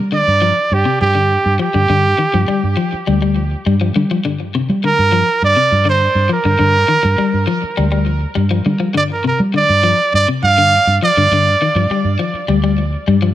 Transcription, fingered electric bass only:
0.00 G3
0.28 G2
0.72 G2
1.01 G2
1.46 G2
1.75 G2
1.90 G2
2.34 G2
2.49 muted fingered electric bass stroke
2.64 G2
2.94 muted fingered electric bass stroke
3.08 D2
3.67 G2
3.96 G3
4.25 G2
4.69 G3
4.99 G2
5.43 G2
5.72 G2
6.15 G2
6.45 G2
6.60 G2
7.05 G2
7.20 muted fingered electric bass stroke
7.34 G2
7.64 muted fingered electric bass stroke
7.79 D2
8.37 G2
8.66 G3
8.97 G2
9.40 G3
9.70 G2
10.14 G2
10.43 G2
10.87 G2
11.17 G2
11.32 G2
11.75 G2
11.90 muted fingered electric bass stroke
12.05 G2
12.34 muted fingered electric bass stroke
12.49 D2
13.08 G2

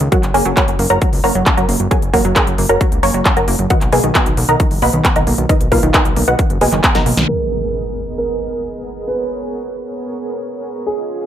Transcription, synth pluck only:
0.12 F#4 A#4 C#5 F#5
0.34 G#4 A#4 C#5 G#5
0.57 F#4 A#4 C#5 F#5
0.90 A#4 C#5 F#5 A#5
1.24 A#4 C#5 F#5 A#5
1.57 A#4 C#5 F#5 A#5
1.91 G#4 A#4 C#5 G#5
2.13 A#4 C#5 F#5 A#5
2.36 G#4 A#4 C#5 G#5
2.69 A#4 C#5 F#5 A#5
3.03 C#5 G#5 A#5 C#6
3.37 A#4 C#5 F#5 A#5
3.70 F#4 B4 D#5 F#5
3.93 G#4 B4 D#5 G#5
4.15 F#4 B4 D#5 F#5
4.49 A#4 D#5 F#5 A#5
4.82 B4 D#5 F#5 B5
5.16 A#4 D#5 F#5 A#5
5.50 D#4 A#4 B4 D#5
5.72 F4 A#4 B4 F5
5.94 D#4 A#4 B4 D#5
6.28 F#4 B4 D#5 F#5
6.61 G#4 B4 D#5 G#5
6.95 A#4 D#5 F#5 A#5

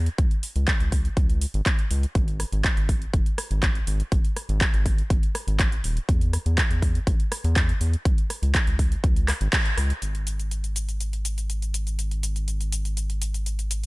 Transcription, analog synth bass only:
0.18 C#2
0.56 C#2
0.80 C#2
1.17 C#2
1.54 G#1
1.91 C#2
2.15 G#1
2.52 G#1
2.77 G#1
3.14 F#1
3.51 G#1
3.87 G#1
4.12 G#1
4.49 G#1
4.74 G#1
5.10 G#1
5.47 G#1
5.84 D#1
6.09 E2
6.46 E2
6.71 E2
7.07 B1
7.44 E2
7.81 E2
8.05 C#2
8.42 C#2
8.67 C#2
9.04 C#2
9.41 G#1
9.77 C#2
10.02 G#1

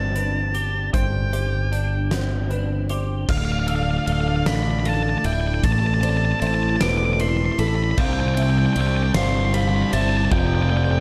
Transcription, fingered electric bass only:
Already playing: G1
0.94 G1
3.29 D1
4.07 D1
4.46 A1
5.25 D1
5.64 A1
6.42 A1
6.81 E1
7.59 A1
7.98 C2
8.76 C2
9.15 G1
9.93 G1
10.32 F1

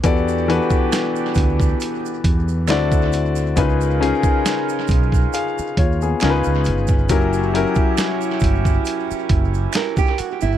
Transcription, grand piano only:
0.03 E3 B3 F#4 G4 A4 D5
0.48 E3 B3 F#4 G4 A4 B4
2.68 D3 C4 E4 F#4 D5
3.56 C#3 C#4 D#4 F4 B4
4.00 C#3 C#4 D#4 F4 G#4
5.34 G#4 F5
5.78 F4 C#5
6.02 B3 G#4
6.22 C#3 C#4 D#4 F4 A#4
6.30 B4
7.10 F#3 C#4 E4 G4 A#4
7.54 F#3 C#4 E4 G4 A#4

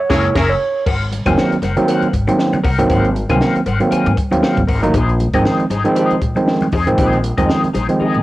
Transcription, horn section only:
0.10 C#4 G#4 A#4 C#5
0.36 C#4 G#4 A#4 C#5

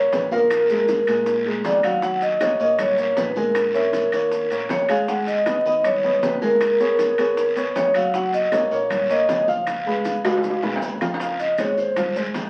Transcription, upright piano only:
Already playing: A#3 A#4 C#5
0.31 F3 F4 F5
0.70 G#3 G#4 A#4
1.08 G#3 G#4 A#4
1.46 G#3 G#4 A#4
1.84 F#3 F#4 F#5
2.03 F#3 F#4 F#5
2.40 A#3 A#4 C#5
2.60 A#3 A#4 C#5
2.97 A#3 A#4 C#5
3.36 G#3 G#4 G#5
3.74 C#4 C#5 E5
4.13 A#3 A#4 C#5
4.51 A#3 A#4 C#5
4.89 G#3 G#4 G#5
5.08 G#3 G#4 G#5
5.46 B3 B4 D#5
5.66 B3 B4 D#5
6.04 B3 B4 D#5
6.42 G#3 G#4 G#5
6.80 B3 G#4 C#5
7.18 B3 G#4 C#5
7.56 B3 B4 C#5
7.95 F#3 F#4 F#5
8.14 F#3 F#4 F#5
8.52 A#3 A#4 C#5
8.71 A#3 A#4 C#5
9.10 A#3 A#4 C#5
9.48 F3 F4 F5
9.87 G#3 G#4 B4
10.25 G#3 G#4 B4
10.63 G#3 G#4 B4
11.01 F3 F4 F5
11.20 F3 F4 F5
11.58 G#3 G#4 C5
11.97 F3 F4 F5
12.16 G#3 G#4 C5

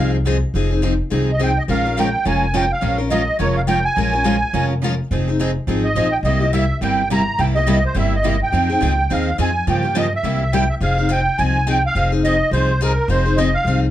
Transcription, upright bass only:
Already playing: C2
0.54 F1
1.11 C2
1.68 A#1
2.26 F1
2.82 A#1
3.40 F1
3.97 A#1
4.53 F1
5.11 F1
5.67 G#1
5.95 A#1
6.23 C2
6.81 G1
7.38 C2
7.95 G1
8.52 F2
8.81 C#2
9.11 D#2
9.38 F2
9.67 G2
10.23 C2
10.81 F1
11.39 C2
11.95 F1
12.51 C2
13.08 F1
13.65 C2

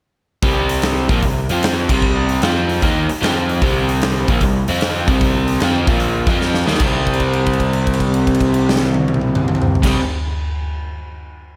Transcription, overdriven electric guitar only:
0.43 C3 G3 C4
1.09 A#2 F3 A#3
1.23 C3 G3
1.50 F3 C4 F4
1.90 C3 G3 C4
2.43 F3 C4 F4
2.83 D#3 A#3 D#4
3.09 muted overdriven electric guitar stroke
3.21 F3 C4 F4
3.62 C3 G3 C4
4.29 A#2 F3 A#3
4.42 C3 G3
4.68 F3 C4 F4
5.08 C3 G3 C4
5.62 F3 C4 F4
5.87 A#2 F3 A#3
6.28 F3 C4 F4
6.67 D#3 A#3 D#4
6.80 C3 G3
6.84 C4
9.82 C3 G3
9.86 C4

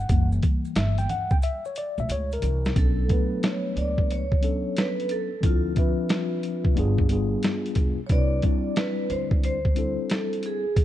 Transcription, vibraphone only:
2.78 A4
3.45 C#5
3.78 D5
4.12 C#5
4.78 B4
5.11 A4
5.46 F4
8.06 C#5
8.12 D5
8.77 B4
9.10 C5
9.45 C5
10.12 A4
10.46 G#4

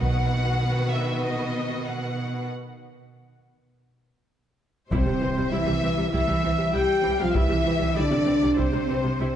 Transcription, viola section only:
0.03 D#3 B3
4.92 G3 E4
5.06 C3 G3
5.20 E3 C4
5.37 C3 G3
5.52 G3 E4
5.66 C3 G3
5.82 E3 C4
5.97 C3 G3
6.12 G3 E4
6.27 C3 G3
6.43 E3 C4
6.57 C3 G3
6.72 G3 E4
7.02 E3 C4
7.19 C3 G3
7.35 G3 E4
7.49 C3 G3
7.65 E3 C4
7.79 C3 G3
7.95 G3 E4
8.11 C3 G3
8.25 E3 C4
8.42 C3 G3
8.56 G3 E4
8.72 C3 G3
8.88 E3 C4
9.03 C3 G3
9.20 G3 E4

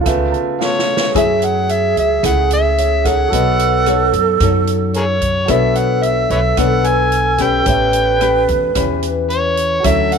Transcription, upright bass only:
0.06 C#2
1.15 F#2
1.97 C#2
2.23 C#2
3.32 B1
4.13 F#2
4.40 F#2
5.49 B1
6.30 B1
6.57 B1
7.66 A1
8.49 E2
8.75 E2
9.85 D2

